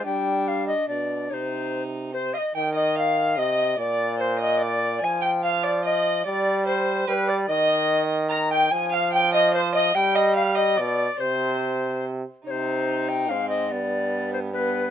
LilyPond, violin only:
\new Staff \with { instrumentName = "Violin" } { \time 3/4 \key g \phrygian \tempo 4 = 146 d'2 d'4 | ees'2 c''8 ees''8 | g''8 ees''8 f''4 ees''4 | d''4 c''8 ees''8 d''4 |
aes''8 g''8 f''8 d''8 ees''4 | d''4 c''4 b'8 d''8 | ees''2 bes''8 g''8 | aes''8 f''8 g''8 ees''8 c''8 ees''8 |
g''8 ees''8 f''8 ees''8 d''4 | c''2 r4 | \key c \minor ees'2 c'4 | b2 b4 | }